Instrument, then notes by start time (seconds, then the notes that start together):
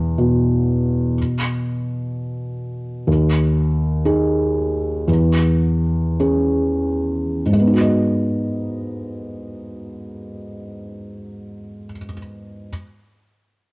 felt piano
Already playing: E2
0.18 B2
3.07 D#2
4.05 D#4 G#4
5.08 E2
6.20 C#4 G#4
7.46 G#2
7.53 G#3
7.60 B3
7.67 D#4
7.74 F#4
7.81 D#5